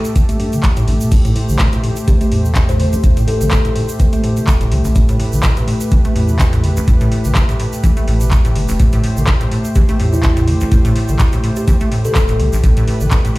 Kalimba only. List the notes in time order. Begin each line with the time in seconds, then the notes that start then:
2.08 G4
2.21 G4
2.69 C5
2.80 C5
3.28 A4
3.41 A4
9.76 G4
9.89 G4
10.13 E4
11.57 G4
11.68 G4
12.05 A4